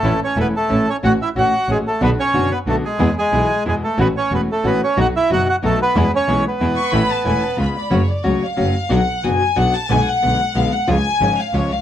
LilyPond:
<<
  \new Staff \with { instrumentName = "Violin section" } { \time 3/4 \key a \major \tempo 4 = 183 << { r2. | r2. | r2. | r2. |
r2. | r2. | r2 r8 cis'''8 | b''8 a''8 gis''8 a''8 b''4 |
\key fis \minor r2. | r2. | r2. | r2. | } \\ { r2. | r2. | r2. | r2. |
r2. | r2. | r2. | r2 r8 d''8 |
cis''8 d''8 cis''8 eis''4. | fis''4 gis''4 fis''8 a''8 | gis''8 fis''4. eis''8 fis''8 | gis''4. eis''8 cis''8 eis''8 | } >> }
  \new Staff \with { instrumentName = "Bandoneon" } { \time 3/4 \key a \major <a a'>8 <cis' cis''>8 <b b'>8 <a a'>4 <cis' cis''>8 | <fis' fis''>8 <e' e''>8 <fis' fis''>4 <gis gis'>8 <a a'>8 | <b b'>8 <cis' cis''>4 <b b'>8 <a a'>8 <gis gis'>8~ | <gis gis'>8 <gis gis'>4. <gis gis'>8 <a a'>8 |
<b b'>8 <cis' cis''>8 <b b'>8 <a a'>8 <b b'>8 <cis' cis''>8 | <fis' fis''>8 <e' e''>8 <fis' fis''>8 <fis' fis''>8 <a a'>8 <b b'>8~ | <b b'>8 <cis' cis''>4 <b b'>4.~ | <b b'>2 r4 |
\key fis \minor r2. | r2. | r2. | r2. | }
  \new Staff \with { instrumentName = "String section" } { \time 3/4 \key a \major <cis' e' a'>8 r8 <cis' e' a'>8 r8 <cis' e' a'>8 r8 | <a cis' fis'>8 r8 <a cis' fis'>8 r8 <a cis' fis'>8 r8 | <b d' fis'>8 r8 <b d' fis'>8 r8 <b d' fis'>8 r8 | <b e' gis'>8 r8 <b e' gis'>8 r8 <b e' gis'>8 r8 |
<a cis' fis'>8 r8 <a cis' fis'>8 r8 <a cis' fis'>8 r8 | <b dis' fis'>8 r8 <b dis' fis'>8 r8 <b dis' fis'>8 r8 | <b e' gis'>8 r8 <b e' gis'>8 r8 <b e' gis'>8 r8 | <cis' e' a'>8 r8 <cis' e' a'>8 r8 <cis' eis' b'>8 r8 |
\key fis \minor r2. | r2. | r2. | r2. | }
  \new Staff \with { instrumentName = "Nylon-string guitar" } { \time 3/4 \key a \major <e a cis' e'>8 r8 <e a cis' e'>8 r8 <e a cis' e'>8 r8 | <a cis' fis'>8 r8 <a cis' fis'>8 r8 <a cis' fis'>8 r8 | <b, d b d' fis'>8 r8 <b, d b d' fis'>8 r8 <b, d b d' fis'>8 r8 | <b, e gis b e'>8 r8 <b, e gis b e'>8 r8 <b, e gis b e'>8 r8 |
<e a cis' fis'>8 r8 <e a cis' fis'>8 r8 <e a cis' fis'>8 r8 | <b, fis b dis' fis'>8 r8 <b, fis b dis' fis'>8 r8 <b, fis b dis' fis'>8 r8 | <b, e gis b e'>8 r8 <b, e gis b e'>8 r8 <b, e gis b e'>8 r8 | <e a cis' e'>8 r8 <e a cis' e'>8 r8 <cis gis b eis' gis'>8 r8 |
\key fis \minor <cis fis a cis' fis'>8 r8 <cis fis a cis' fis'>8 r8 <cis fis a cis' fis'>8 r8 | <b, fis b d' fis'>8 r8 <b, fis b d' fis'>8 r8 <b, fis b d' fis'>8 r8 | <b, d gis b>8 r8 <b, d gis b>8 r8 <b, d gis b>8 r8 | <cis eis gis cis' eis'>8 r8 <cis eis gis cis' eis'>8 r8 <cis eis gis cis' eis'>8 r8 | }
  \new Staff \with { instrumentName = "Double bass" } { \clef bass \time 3/4 \key a \major a,,8 r8 e,,8 r8 a,,8 r8 | a,,8 r8 a,,8 r8 a,,8 r8 | b,,8 r8 fis,,8 r8 b,,8 r8 | e,8 r8 b,,8 r8 e,8 r8 |
a,,8 r8 e,,8 r8 a,,8 r8 | b,,8 r8 fis,,8 r8 b,,8 r8 | e,8 r8 b,,8 r8 e,8 r8 | a,,8 r8 e,,8 r8 cis,8 r8 |
\key fis \minor fis,,8 r8 cis,8 r8 fis,,8 r8 | b,,8 r8 fis,,8 r8 b,,8 r8 | b,,8 r8 b,,8 r8 b,,8 r8 | cis,8 r8 gis,,8 r8 cis,8 bis,,8 | }
>>